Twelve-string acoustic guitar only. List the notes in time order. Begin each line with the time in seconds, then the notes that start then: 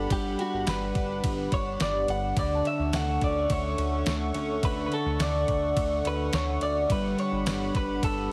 Already playing: B3 D4
0.11 G3
0.39 D4
0.67 B3
0.95 D4
1.24 B3
1.52 D4
1.80 B3
2.08 D4
2.37 D3
2.66 C#4
2.94 A3
3.22 C#4
3.50 A3
3.78 C#4
4.07 A3
4.35 C#4
4.63 D3
4.92 C#4
5.20 A3
5.77 A3
6.06 C#4
6.33 A3
6.62 C#4
6.90 G3
7.18 D4
7.47 B3
7.75 D4
8.03 B3